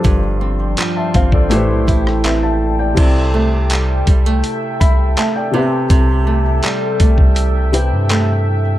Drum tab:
CC |----------------|x---------------|----------------|
HH |x---x-x-x-x-x---|x---x-x-x-x-x---|x---x-x-x-x-x---|
CP |----x-------x---|----x-------x---|----x-------x---|
SD |-----------r----|----------------|----------------|
BD |o-----oo--o-----|o-----o---o-----|o-----oo--------|